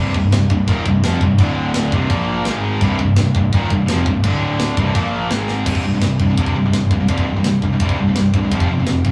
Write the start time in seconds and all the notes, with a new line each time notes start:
Already playing: C1 C2 G2
0.00 C3
0.14 C1 C2 G2, kick
0.32 C1 C2 G2, snare, china
0.50 C1 C2 G2, kick
0.68 D#1 D#2 A#2 D#3, kick, china
0.86 C1 C2 G2, kick
1.03 F1 F2 C3 F3, snare, china
1.21 C1 C2 G2, kick
1.38 D1 D2 A2 D3, kick, china
1.74 snare, china
1.92 C1 C2 G2 C3, kick
2.10 A#1 A#2 F3 A#3, kick, china
2.45 G#1 G#2 D#3 G#3, snare, china
2.81 C1 C2 G2 C3, kick, china
2.99 C1 C2 G2, kick
3.16 C1 C2 G2, snare, china
3.35 C1 C2 G2, kick
3.52 D#1 D#2 A#2 D#3, kick, china
3.70 C1 C2 G2, kick
3.88 F1 F2 C3 F3, snare, china
4.06 C1 C2 G2, kick
4.24 D1 D2 A2 D3, kick, china
4.60 snare, china
4.77 C1 C2 G2 C3, kick
4.95 A#1 A#2 F3 A#3, kick, china
5.30 G#1 G#2 D#3 G#3, snare, china
5.48 snare
5.66 C1 C2 G2 C3, kick, crash
5.75 kick
5.85 C2 G2
5.94 C2 G2
6.02 C1 C2 G2, snare, ride bell
6.20 C1 C2 G2, kick
6.30 C2 G2
6.38 C1 C2 G2 C3, kick, ride bell
6.46 kick
6.55 C1 C2 G2
6.66 C2 G2
6.73 G1 C2 G2, snare, ride bell
6.91 C1 C2 G2, kick
7.01 C2 G2
7.08 C1 C2 G2 C3, kick, ride bell
7.18 kick
7.27 C1 C2 G2
7.37 C2 G2
7.44 C1 C2 G2, snare, ride bell
7.62 C2 G2, kick
7.73 C2 G2
7.80 C1 C2 G2 C3, kick, ride bell
7.89 kick
7.98 C1 C2 G2
8.09 C2 G2
8.16 C2 G2, snare, ride bell
8.34 C1 C2 G2, kick
8.45 C2 G2
8.51 F1 F2 C3 F3, kick, ride bell
8.60 kick
8.71 F2 C3
8.81 F2 C3
8.87 F1 F2 C3, snare, ride bell
9.05 F1 F2 C3, kick